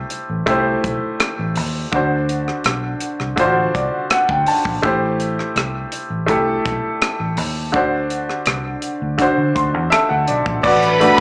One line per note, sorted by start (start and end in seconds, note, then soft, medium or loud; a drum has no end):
0.00 0.46 A3 medium
0.00 0.47 E4 medium
0.00 0.49 G4 medium
0.00 0.50 C5 medium
0.10 closed hi-hat medium
0.30 0.44 A1 medium
0.46 0.75 C2 medium
0.46 1.42 A3 medium
0.46 1.43 E4 medium
0.46 1.44 G4 medium
0.46 1.44 C5 medium
0.46 kick medium
0.46 closed hi-hat medium
0.84 0.98 B1 medium
0.84 kick medium
0.84 closed hi-hat medium
1.20 cross-stick loud
1.20 closed hi-hat medium
1.39 1.57 A1 medium
1.56 1.85 D#2 medium
1.56 open hi-hat medium
1.92 2.49 D2 medium
1.92 2.88 D3 medium
1.92 2.88 D4 medium
1.92 2.89 F#4 medium
1.92 2.90 C5 medium
1.92 kick medium
1.92 closed hi-hat medium
2.29 closed hi-hat medium
2.48 cross-stick soft
2.64 2.93 B1 medium
2.64 cross-stick medium
2.64 closed hi-hat medium
3.00 closed hi-hat medium
3.20 3.34 C2 medium
3.20 cross-stick soft
3.36 3.66 A1 medium
3.36 4.33 D3 medium
3.36 4.33 D4 medium
3.36 3.45 F4 medium
3.36 4.34 C5 medium
3.36 kick medium
3.36 closed hi-hat medium
3.45 4.37 F#4 medium
3.75 3.89 C2 medium
3.75 4.08 D5 medium
3.75 kick medium
3.75 closed hi-hat medium
4.10 4.28 F#5 medium
4.10 muted fingered electric bass stroke soft
4.10 cross-stick loud
4.10 closed hi-hat medium
4.29 4.43 D2 medium
4.29 4.46 G5 medium
4.29 kick medium
4.46 4.81 A5 medium
4.46 open hi-hat medium
4.65 4.79 A#1 medium
4.65 kick medium
4.82 5.40 A1 medium
4.82 5.78 A3 medium
4.82 5.79 E4 medium
4.82 5.79 G4 medium
4.82 5.80 C5 medium
4.82 kick medium
4.82 closed hi-hat medium
5.20 closed hi-hat medium
5.39 cross-stick soft
5.56 5.84 C2 medium
5.56 cross-stick medium
5.56 closed hi-hat medium
5.92 closed hi-hat medium
6.10 6.29 A1 medium
6.26 6.57 C2 medium
6.26 7.23 A3 medium
6.26 7.24 E4 medium
6.26 7.24 G4 medium
6.26 7.25 A4 medium
6.26 kick medium
6.26 closed hi-hat medium
6.66 6.79 B1 medium
6.66 kick medium
6.66 closed hi-hat medium
7.02 cross-stick medium
7.02 closed hi-hat medium
7.20 7.38 A1 medium
7.37 7.74 D#2 medium
7.37 open hi-hat medium
7.72 8.30 D2 medium
7.72 8.68 D3 medium
7.72 8.69 D4 medium
7.72 8.69 F#4 medium
7.72 8.70 C5 medium
7.72 kick medium
7.72 closed hi-hat medium
8.10 closed hi-hat medium
8.30 cross-stick soft
8.46 8.75 C2 medium
8.46 cross-stick medium
8.46 closed hi-hat medium
8.82 closed hi-hat medium
9.02 9.15 D2 medium
9.18 10.14 D3 medium
9.18 10.14 D4 medium
9.18 10.15 F#4 medium
9.18 10.16 C5 medium
9.18 kick medium
9.18 closed hi-hat medium
9.38 9.51 D3 medium
9.55 9.74 D2 medium
9.55 9.89 C6 medium
9.55 kick medium
9.55 closed hi-hat medium
9.74 9.88 E2 medium
9.90 10.60 A4 medium
9.90 10.65 E5 medium
9.90 10.08 A5 medium
9.90 cross-stick loud
9.90 closed hi-hat medium
10.09 10.24 D2 medium
10.09 10.26 F#5 medium
10.28 10.42 B1 medium
10.28 10.61 D5 medium
10.28 closed hi-hat medium
10.46 10.60 A#1 medium
10.46 kick medium
10.63 11.06 A1 medium
10.63 11.20 F#3 medium
10.63 11.20 A3 medium
10.63 11.20 D4 medium
10.63 11.00 F#4 medium
10.63 11.20 B4 loud
10.63 11.20 D5 medium
10.63 11.20 B5 loud
10.63 kick loud
10.63 crash medium
10.82 closed hi-hat soft
11.00 11.20 A3 medium
11.00 11.20 D4 soft
11.00 11.20 F#4 medium
11.00 closed hi-hat medium